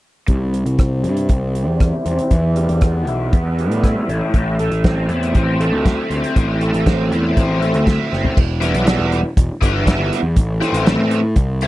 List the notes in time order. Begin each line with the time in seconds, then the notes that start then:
0.28 C2 C3, kick, closed hi-hat
0.53 G3, closed hi-hat
0.66 C2, closed hi-hat
0.77 C4, kick, cross-stick, closed hi-hat
1.04 G2 E4, closed hi-hat
1.17 closed hi-hat
1.29 C2 C4, kick, closed hi-hat
1.55 G3, closed hi-hat
1.67 E2
1.80 E4, kick, cross-stick, closed hi-hat
2.05 E2 C4, closed hi-hat
2.19 closed hi-hat
2.31 E2 E3, kick, closed hi-hat
2.56 G3, closed hi-hat
2.69 E2, closed hi-hat
2.81 B3, kick, cross-stick, closed hi-hat
3.07 B1 E4, closed hi-hat
3.33 E2 B3, kick, closed hi-hat
3.59 G3, closed hi-hat
3.70 A2, closed hi-hat
3.84 E4, kick, cross-stick, closed hi-hat
4.09 A1 A2, closed hi-hat
4.34 A1 A2, kick, closed hi-hat
4.59 A3, closed hi-hat
4.71 A1, closed hi-hat
4.84 C4, kick, snare, closed hi-hat
5.09 E2 E4, closed hi-hat
5.23 closed hi-hat
5.35 A1 C4, kick, closed hi-hat
5.60 A3, closed hi-hat
5.72 D2
5.85 E4, kick, snare, closed hi-hat
6.10 D2 C4, closed hi-hat
6.24 closed hi-hat
6.36 A1 A2, kick, closed hi-hat
6.61 A3, closed hi-hat
6.74 A1, closed hi-hat
6.86 C4, kick, snare, closed hi-hat
7.11 E2 E4, closed hi-hat
7.37 A1 C4, kick, closed hi-hat
7.61 A3, closed hi-hat
7.74 D2, closed hi-hat
7.86 E4, kick, snare, closed hi-hat
8.11 F#1 C4, snare
8.24 floor tom
8.37 E1, kick, crash
8.61 E3 G3 B3 E4, closed hi-hat
8.74 B1, closed hi-hat
8.86 E3 G3 B3 E4, snare, closed hi-hat
8.99 E1
9.12 closed hi-hat
9.37 E1, kick, closed hi-hat
9.61 G1 E3 G3 B3 E4, kick, closed hi-hat
9.86 E3 G3 B3 E4, kick, snare, closed hi-hat
9.99 G1
10.13 snare, closed hi-hat
10.23 E2
10.36 A1, kick, closed hi-hat
10.61 E3 A3 C4 E4, closed hi-hat
10.73 A1, closed hi-hat
10.86 E3 A3 C4 E4, snare, closed hi-hat
10.98 A2
11.11 closed hi-hat
11.36 C2, kick, closed hi-hat
11.61 E3 A3 C4 E4, closed hi-hat